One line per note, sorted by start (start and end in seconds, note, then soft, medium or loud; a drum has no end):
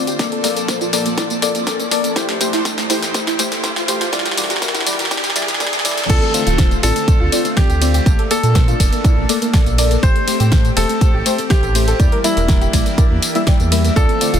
0.00 0.17 D2 medium
0.00 0.17 D3 medium
0.00 0.16 C4 medium
0.00 0.16 F4 medium
0.00 0.17 F4 medium
0.00 0.17 C5 medium
0.00 0.16 D5 medium
0.00 riser medium
0.07 0.13 G4 medium
0.07 closed hi-hat medium
0.07 tambourine soft
0.19 2.14 A#2 medium
0.19 2.14 F3 medium
0.19 0.41 A#3 medium
0.19 0.26 A#3 medium
0.19 0.41 A4 medium
0.19 2.14 A4 medium
0.19 0.41 D5 loud
0.19 2.14 D5 medium
0.19 kick loud
0.19 snare medium
0.19 closed hi-hat medium
0.19 tambourine soft
0.32 0.38 A4 medium
0.32 closed hi-hat soft
0.44 0.50 A#3 medium
0.44 0.50 A4 medium
0.44 0.50 D5 medium
0.44 snare medium
0.44 open hi-hat loud
0.44 tambourine medium
0.57 0.63 A4 medium
0.57 closed hi-hat medium
0.57 tambourine soft
0.68 0.75 A#3 medium
0.68 0.79 A#3 medium
0.68 0.79 A4 medium
0.68 0.79 C5 medium
0.68 kick loud
0.68 snare medium
0.68 closed hi-hat medium
0.68 tambourine soft
0.81 0.87 F4 loud
0.81 closed hi-hat soft
0.81 tambourine soft
0.93 0.99 A#3 medium
0.93 1.03 A#3 medium
0.93 1.03 A4 medium
0.93 1.03 D5 medium
0.93 snare medium
0.93 open hi-hat medium
0.93 tambourine medium
1.06 1.12 A#3 medium
1.06 closed hi-hat medium
1.06 tambourine soft
1.18 1.24 A#3 medium
1.18 1.24 E4 medium
1.18 1.24 A4 medium
1.18 1.24 D5 medium
1.18 kick loud
1.18 snare medium
1.18 closed hi-hat medium
1.18 tambourine soft
1.30 1.36 A#3 medium
1.30 closed hi-hat soft
1.30 tambourine soft
1.42 1.49 A#3 medium
1.42 1.49 A4 medium
1.42 1.49 D5 loud
1.42 snare medium
1.42 open hi-hat loud
1.42 tambourine medium
1.55 1.61 A#3 medium
1.55 closed hi-hat soft
1.55 tambourine soft
1.67 1.77 A#3 loud
1.67 1.73 A4 medium
1.67 1.77 A4 medium
1.67 1.77 D5 loud
1.67 kick loud
1.67 snare medium
1.67 closed hi-hat medium
1.67 tambourine soft
1.80 1.86 A#3 medium
1.80 closed hi-hat soft
1.80 tambourine soft
1.91 1.98 A#3 medium
1.91 2.13 A#3 medium
1.91 2.13 A4 medium
1.91 2.13 D5 medium
1.91 snare medium
1.91 open hi-hat medium
1.91 tambourine medium
2.04 2.10 A#3 medium
2.04 closed hi-hat medium
2.04 tambourine soft
2.16 4.11 A2 medium
2.16 4.11 E3 medium
2.16 2.38 A3 medium
2.16 2.22 E4 medium
2.16 2.38 G4 medium
2.16 6.06 G4 medium
2.16 2.38 C5 loud
2.16 4.11 C5 medium
2.16 kick loud
2.16 snare medium
2.16 closed hi-hat medium
2.16 tambourine soft
2.29 2.35 A3 medium
2.29 snare medium
2.29 closed hi-hat soft
2.41 2.47 A3 medium
2.41 2.47 G4 medium
2.41 2.47 C5 medium
2.41 snare medium
2.41 open hi-hat loud
2.41 tambourine medium
2.53 2.59 E4 medium
2.53 snare medium
2.53 closed hi-hat medium
2.53 tambourine soft
2.65 2.75 A3 medium
2.65 2.72 A3 medium
2.65 2.75 G4 medium
2.65 2.75 A4 medium
2.65 kick loud
2.65 snare medium
2.65 closed hi-hat medium
2.65 tambourine soft
2.78 2.84 A3 medium
2.78 snare medium
2.78 closed hi-hat soft
2.78 tambourine soft
2.90 3.00 A3 medium
2.90 2.96 E4 loud
2.90 3.00 G4 medium
2.90 3.00 C5 medium
2.90 snare medium
2.90 open hi-hat medium
2.90 tambourine medium
3.02 3.09 A3 medium
3.02 snare medium
3.02 closed hi-hat medium
3.02 tambourine soft
3.14 3.21 A3 medium
3.14 3.21 G4 medium
3.14 3.21 C5 medium
3.14 kick loud
3.14 snare loud
3.14 closed hi-hat medium
3.14 tambourine soft
3.27 3.33 E4 loud
3.27 snare medium
3.27 closed hi-hat soft
3.27 tambourine soft
3.39 3.45 A3 loud
3.39 3.45 A3 medium
3.39 3.45 G4 medium
3.39 3.45 C5 loud
3.39 snare loud
3.39 open hi-hat loud
3.39 tambourine medium
3.52 3.58 A3 medium
3.52 snare medium
3.52 closed hi-hat medium
3.52 tambourine soft
3.63 3.74 A3 loud
3.63 3.70 A3 medium
3.63 3.74 G4 medium
3.63 3.74 C5 loud
3.63 kick medium
3.63 snare loud
3.63 closed hi-hat medium
3.63 tambourine soft
3.76 3.82 F4 medium
3.76 snare medium
3.76 closed hi-hat soft
3.76 tambourine soft
3.88 4.10 A3 medium
3.88 3.95 A3 medium
3.88 4.10 G4 medium
3.88 4.10 C5 medium
3.88 snare loud
3.88 open hi-hat medium
3.88 tambourine medium
4.01 4.07 F4 medium
4.01 snare medium
4.01 closed hi-hat medium
4.01 tambourine soft
4.13 6.08 E2 medium
4.13 6.08 D3 medium
4.13 4.19 E3 medium
4.13 4.34 G3 medium
4.13 4.34 E4 medium
4.13 6.08 A#4 medium
4.13 4.34 D5 loud
4.13 kick loud
4.13 snare loud
4.13 closed hi-hat medium
4.13 tambourine soft
4.19 snare medium
4.25 4.31 G4 medium
4.25 snare medium
4.25 closed hi-hat soft
4.25 tambourine soft
4.31 snare medium
4.37 4.44 E3 medium
4.37 4.44 G3 medium
4.37 4.44 E4 medium
4.37 4.44 D5 medium
4.37 snare loud
4.37 open hi-hat loud
4.37 tambourine medium
4.44 snare medium
4.50 4.56 G4 medium
4.50 snare medium
4.50 closed hi-hat medium
4.50 tambourine soft
4.56 snare medium
4.62 4.68 E3 medium
4.62 4.72 G3 medium
4.62 4.72 E4 medium
4.62 4.72 A#4 medium
4.62 kick loud
4.62 snare loud
4.62 closed hi-hat medium
4.62 tambourine soft
4.68 snare loud
4.74 4.81 E4 loud
4.74 snare medium
4.74 closed hi-hat soft
4.74 tambourine soft
4.80 snare medium
4.86 4.93 E3 medium
4.86 4.97 G3 medium
4.86 4.97 E4 medium
4.86 4.97 D5 medium
4.86 snare loud
4.86 open hi-hat medium
4.86 tambourine medium
4.93 snare medium
4.99 5.05 E3 medium
4.99 snare medium
4.99 closed hi-hat medium
4.99 tambourine soft
5.05 snare loud
5.11 5.17 G3 medium
5.11 5.18 D4 medium
5.11 5.18 E4 medium
5.11 5.18 D5 medium
5.11 kick loud
5.11 snare loud
5.11 closed hi-hat medium
5.11 tambourine soft
5.17 snare loud
5.24 5.30 E3 medium
5.24 snare loud
5.24 closed hi-hat soft
5.24 tambourine soft
5.30 snare medium
5.36 5.42 G3 medium
5.36 5.42 E4 medium
5.36 5.42 D5 loud
5.36 snare loud
5.36 open hi-hat loud
5.36 tambourine medium
5.42 snare loud
5.48 5.54 E3 medium
5.48 snare medium
5.48 closed hi-hat medium
5.48 tambourine soft
5.54 snare loud
5.60 5.70 G3 medium
5.60 5.67 A#3 medium
5.60 5.70 E4 medium
5.60 5.70 D5 loud
5.60 kick loud
5.60 snare loud
5.60 closed hi-hat medium
5.60 tambourine soft
5.67 snare loud
5.73 5.79 E3 medium
5.73 snare loud
5.73 closed hi-hat soft
5.73 tambourine soft
5.79 snare loud
5.85 5.91 E3 medium
5.85 6.07 G3 medium
5.85 6.07 E4 medium
5.85 6.06 D5 loud
5.85 snare loud
5.85 open hi-hat medium
5.85 tambourine medium
5.91 snare loud
5.98 6.04 E3 medium
5.98 snare loud
5.98 closed hi-hat medium
5.98 tambourine soft
6.04 snare loud
6.09 6.18 D2 loud
6.09 8.04 D3 medium
6.09 11.96 A3 medium
6.09 6.31 C4 medium
6.09 8.04 C4 medium
6.09 8.04 F4 medium
6.09 6.31 F4 medium
6.09 6.16 F4 medium
6.09 6.74 A4 medium
6.09 6.74 A4 loud
6.09 6.31 D5 loud
6.09 kick loud
6.09 closed hi-hat medium
6.09 crash loud
6.09 tambourine soft
6.22 6.28 A3 medium
6.22 closed hi-hat soft
6.34 6.40 A3 medium
6.34 6.40 C4 medium
6.34 6.40 F4 medium
6.34 6.40 D5 medium
6.34 open hi-hat loud
6.34 ride medium
6.34 tambourine medium
6.47 6.77 D1 medium
6.47 6.53 F4 medium
6.47 closed hi-hat medium
6.47 tambourine soft
6.58 6.65 A3 medium
6.58 6.69 C4 medium
6.58 6.69 F4 medium
6.58 6.69 C5 medium
6.58 kick loud
6.58 snare loud
6.58 closed hi-hat medium
6.58 tambourine soft
6.71 6.77 A3 medium
6.71 closed hi-hat soft
6.71 tambourine soft
6.83 6.92 A1 loud
6.83 6.93 C4 medium
6.83 6.90 F4 loud
6.83 6.93 F4 medium
6.83 7.47 A4 medium
6.83 6.93 D5 medium
6.83 open hi-hat medium
6.83 ride medium
6.83 tambourine medium
6.96 7.02 A3 medium
6.96 closed hi-hat medium
6.96 tambourine soft
7.08 7.14 A3 medium
7.08 7.14 C4 medium
7.08 7.14 F4 medium
7.08 7.14 D5 medium
7.08 kick loud
7.08 closed hi-hat medium
7.08 tambourine soft
7.20 7.29 D2 medium
7.20 7.27 F4 medium
7.32 7.39 A3 medium
7.32 7.39 C4 medium
7.32 7.39 F4 medium
7.32 7.39 D5 loud
7.32 open hi-hat loud
7.32 ride medium
7.32 tambourine medium
7.45 7.51 A3 medium
7.45 closed hi-hat medium
7.45 tambourine soft
7.57 7.67 C4 loud
7.57 7.67 F4 medium
7.57 8.21 G4 medium
7.57 7.67 D5 loud
7.57 kick loud
7.57 snare loud
7.57 closed hi-hat medium
7.57 tambourine soft
7.70 8.00 D2 medium
7.70 7.76 G4 medium
7.70 closed hi-hat soft
7.70 tambourine soft
7.81 7.88 A3 medium
7.81 8.03 C4 medium
7.81 8.03 F4 medium
7.81 8.03 D5 medium
7.81 open hi-hat medium
7.81 ride medium
7.81 tambourine medium
7.94 8.00 G4 medium
7.94 closed hi-hat medium
7.94 tambourine soft
8.06 8.15 A#1 loud
8.06 8.13 A#3 medium
8.06 8.28 A#3 medium
8.06 10.01 A#3 medium
8.06 10.01 D4 medium
8.06 8.28 A4 medium
8.06 8.28 D5 loud
8.06 kick loud
8.06 closed hi-hat medium
8.06 tambourine soft
8.19 8.25 A4 medium
8.19 closed hi-hat soft
8.31 8.37 A#3 medium
8.31 9.93 A4 medium
8.31 8.37 A4 medium
8.31 9.93 A4 loud
8.31 8.37 D5 medium
8.31 open hi-hat loud
8.31 ride medium
8.31 tambourine medium
8.43 8.74 A#2 medium
8.43 8.49 A4 medium
8.43 closed hi-hat medium
8.43 tambourine soft
8.55 8.62 A#3 medium
8.55 8.66 A#3 medium
8.55 8.66 A4 medium
8.55 8.66 C5 medium
8.55 kick loud
8.55 snare loud
8.55 closed hi-hat medium
8.55 tambourine soft
8.68 8.74 F4 medium
8.68 closed hi-hat soft
8.68 tambourine soft
8.80 8.88 F1 loud
8.80 8.86 A#3 medium
8.80 8.90 A#3 medium
8.80 8.90 A4 medium
8.80 8.90 D5 medium
8.80 kick medium
8.80 open hi-hat medium
8.80 ride medium
8.80 tambourine medium
8.92 8.99 A#3 medium
8.92 closed hi-hat medium
8.92 tambourine soft
9.04 9.11 A#3 medium
9.04 9.11 E4 loud
9.04 9.11 A4 medium
9.04 9.11 D5 medium
9.04 kick loud
9.04 closed hi-hat medium
9.04 tambourine soft
9.17 9.25 A#1 medium
9.17 9.23 A#3 medium
9.29 9.36 A#3 medium
9.29 9.36 A4 medium
9.29 9.36 D5 loud
9.29 open hi-hat loud
9.29 ride medium
9.29 tambourine medium
9.42 9.48 A#3 medium
9.42 closed hi-hat medium
9.42 tambourine soft
9.53 9.64 A#3 loud
9.53 9.60 A4 medium
9.53 9.64 A4 medium
9.53 9.64 D5 loud
9.53 kick loud
9.53 snare loud
9.53 closed hi-hat medium
9.53 tambourine soft
9.66 9.97 A#1 medium
9.66 9.72 A#3 medium
9.66 closed hi-hat soft
9.66 tambourine soft
9.78 9.85 A#3 medium
9.78 10.00 A#3 medium
9.78 10.00 A4 medium
9.78 10.00 D5 medium
9.78 open hi-hat loud
9.78 ride medium
9.78 tambourine medium
9.91 9.97 A#3 medium
9.91 closed hi-hat medium
9.91 tambourine soft
10.03 10.12 A1 loud
10.03 10.25 A3 medium
10.03 11.98 C4 medium
10.03 10.09 G4 loud
10.03 10.25 G4 medium
10.03 13.92 G4 medium
10.03 10.67 C5 loud
10.03 kick loud
10.03 closed hi-hat medium
10.03 tambourine soft
10.15 10.22 A3 medium
10.15 closed hi-hat soft
10.27 10.34 A3 medium
10.27 10.34 G4 medium
10.27 10.34 C5 medium
10.27 open hi-hat loud
10.27 ride medium
10.27 tambourine medium
10.40 10.71 A2 medium
10.40 10.46 G4 medium
10.40 closed hi-hat medium
10.40 tambourine soft
10.52 10.62 A3 medium
10.52 10.62 G4 medium
10.52 10.62 A4 medium
10.52 kick loud
10.52 snare loud
10.52 closed hi-hat medium
10.52 tambourine soft
10.65 10.71 A3 medium
10.65 closed hi-hat soft
10.65 tambourine soft
10.77 10.85 E1 loud
10.77 10.87 A3 medium
10.77 10.87 G4 medium
10.77 10.83 G4 loud
10.77 11.41 A4 loud
10.77 10.87 C5 medium
10.77 open hi-hat loud
10.77 ride medium
10.77 tambourine medium
10.89 10.95 A3 medium
10.89 closed hi-hat medium
10.89 tambourine soft
11.01 11.08 A3 medium
11.01 11.08 G4 medium
11.01 11.08 C5 medium
11.01 kick loud
11.01 closed hi-hat medium
11.01 tambourine soft
11.14 11.22 A1 medium
11.14 11.20 G4 medium
11.26 11.32 A3 loud
11.26 11.32 A3 medium
11.26 11.32 G4 medium
11.26 11.32 C5 loud
11.26 open hi-hat loud
11.26 ride medium
11.26 tambourine medium
11.38 11.45 A3 medium
11.38 closed hi-hat medium
11.38 tambourine soft
11.50 11.61 A3 loud
11.50 11.57 A3 medium
11.50 12.15 G4 loud
11.50 11.61 G4 medium
11.50 12.15 G4 loud
11.50 11.61 C5 loud
11.50 kick loud
11.50 snare loud
11.50 closed hi-hat medium
11.50 tambourine soft
11.63 11.93 A1 medium
11.63 11.69 A4 medium
11.63 closed hi-hat soft
11.63 tambourine soft
11.75 11.81 A3 medium
11.75 11.97 A3 medium
11.75 11.97 G4 medium
11.75 11.97 C5 medium
11.75 open hi-hat loud
11.75 ride medium
11.75 tambourine medium
11.88 11.94 A4 medium
11.88 closed hi-hat medium
11.88 tambourine soft
12.00 12.08 E2 loud
12.00 13.94 E3 medium
12.00 12.21 G3 medium
12.00 12.06 A#3 medium
12.00 13.94 A#3 medium
12.00 13.94 D4 medium
12.00 12.21 E4 medium
12.00 12.21 D5 loud
12.00 kick loud
12.00 closed hi-hat medium
12.00 tambourine soft
12.12 12.18 A#4 medium
12.12 closed hi-hat soft
12.24 12.31 G3 medium
12.24 12.31 A#3 medium
12.24 13.87 E4 medium
12.24 12.31 E4 medium
12.24 13.87 E4 loud
12.24 12.31 D5 medium
12.24 open hi-hat loud
12.24 ride medium
12.24 tambourine medium
12.37 12.67 E1 medium
12.37 12.43 A#4 medium
12.37 closed hi-hat medium
12.37 tambourine soft
12.48 12.59 G3 medium
12.48 12.55 A#3 medium
12.48 12.59 E4 medium
12.48 12.59 A#4 medium
12.48 kick loud
12.48 snare loud
12.48 closed hi-hat medium
12.48 tambourine soft
12.61 12.67 G4 loud
12.61 closed hi-hat soft
12.61 tambourine soft
12.73 12.82 A#1 loud
12.73 12.84 G3 medium
12.73 12.80 A#3 medium
12.73 12.84 E4 medium
12.73 12.84 D5 medium
12.73 kick medium
12.73 open hi-hat loud
12.73 ride medium
12.73 tambourine medium
12.86 12.92 A#3 medium
12.86 closed hi-hat soft
12.86 tambourine soft
12.98 13.04 G3 medium
12.98 13.04 E4 medium
12.98 13.04 A#4 medium
12.98 13.04 D5 medium
12.98 kick loud
12.98 closed hi-hat medium
12.98 tambourine soft
13.10 13.19 E2 medium
13.10 13.17 A#3 medium
13.22 open hi-hat loud
13.22 ride medium
13.22 tambourine medium
13.35 13.41 G3 medium
13.35 13.41 A#3 medium
13.35 13.41 E4 medium
13.35 13.41 E5 medium
13.35 closed hi-hat soft
13.35 tambourine soft
13.47 13.54 G3 medium
13.47 13.54 E4 medium
13.47 13.54 D5 medium
13.47 13.54 G5 medium
13.47 kick loud
13.47 snare loud
13.47 closed hi-hat medium
13.47 tambourine soft
13.60 13.90 E2 medium
13.60 13.66 A#3 medium
13.60 closed hi-hat soft
13.60 tambourine soft
13.72 13.93 G3 medium
13.72 13.78 A#3 medium
13.72 13.93 E4 medium
13.72 13.93 E5 loud
13.72 open hi-hat loud
13.72 ride medium
13.72 tambourine medium
13.84 13.90 A#3 medium
13.84 closed hi-hat medium
13.84 tambourine soft
13.96 14.05 D2 loud
13.96 14.39 D3 medium
13.96 14.39 A3 medium
13.96 14.39 C4 medium
13.96 14.18 C4 medium
13.96 14.03 F4 loud
13.96 14.39 F4 medium
13.96 14.18 F4 medium
13.96 14.39 A4 loud
13.96 14.18 D5 loud
13.96 kick loud
13.96 closed hi-hat medium
13.96 tambourine soft
14.09 14.15 A3 medium
14.09 closed hi-hat soft
14.21 14.27 A3 medium
14.21 14.27 C4 medium
14.21 14.27 F4 medium
14.21 14.27 D5 medium
14.21 open hi-hat loud
14.21 ride medium
14.21 tambourine medium
14.33 14.39 D1 medium
14.33 14.39 F4 medium
14.33 closed hi-hat medium
14.33 tambourine soft